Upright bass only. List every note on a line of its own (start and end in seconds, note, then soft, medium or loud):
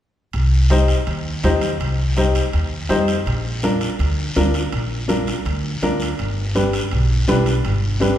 0.34 0.93 C2 medium
1.07 1.37 D#2 medium
1.44 1.73 D#2 medium
1.80 2.39 C2 medium
2.54 2.83 D#2 medium
2.89 3.19 F2 medium
3.26 3.85 A#1 medium
3.99 4.29 D2 loud
4.36 4.66 D2 medium
4.73 5.32 A#1 medium
5.45 5.75 D2 loud
5.82 6.12 D2 medium
6.20 6.78 G1 medium
6.93 7.22 B1 medium
7.30 7.59 B1 medium
7.66 8.18 G1 medium